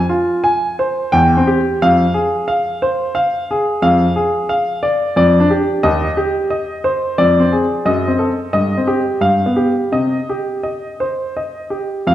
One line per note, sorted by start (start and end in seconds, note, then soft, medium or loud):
0.00 0.11 G#5 medium
0.09 0.46 F4 medium
0.44 0.80 G#5 medium
0.79 1.13 C5 medium
1.12 1.35 E2 medium
1.12 1.48 G5 medium
1.37 1.60 C4 medium
1.47 1.80 G4 medium
1.82 2.03 F2 medium
1.82 2.16 F5 medium
2.14 2.49 G#4 medium
2.48 2.83 F5 medium
2.82 3.17 C5 medium
3.15 3.51 F5 medium
3.51 3.84 G#4 soft
3.82 4.04 F2 medium
3.82 4.18 F5 medium
4.16 4.51 G#4 medium
4.49 4.85 F5 medium
4.83 5.15 D5 medium
5.16 5.38 F2 medium
5.16 5.52 D5 medium
5.40 5.63 D4 medium
5.50 5.83 G4 soft
5.83 6.05 D#2 medium
5.83 6.18 D#5 medium
6.17 6.52 G4 soft
6.50 6.85 D#5 medium
6.84 7.17 C5 medium
7.18 7.40 F2 medium
7.18 7.53 D5 medium
7.40 7.63 C4 soft
7.52 7.85 G#4 soft
7.85 8.07 F#2 medium
7.85 8.20 D#5 medium
8.08 8.31 C4 soft
8.19 8.52 A4 soft
8.53 8.75 G2 medium
8.53 8.89 D#5 medium
8.77 9.01 C4 soft
8.87 9.22 G4 soft
9.21 9.44 G2 medium
9.21 9.59 F5 medium
9.46 9.71 B3 soft
9.56 9.93 G4 soft
9.92 10.16 C3 soft
9.92 10.31 D#5 medium
10.29 10.67 G4 soft
10.63 11.02 D#5 soft
11.00 11.38 C5 soft
11.37 11.74 D#5 soft
11.70 12.07 G4 soft
12.07 12.15 F2 medium
12.07 12.15 F5 medium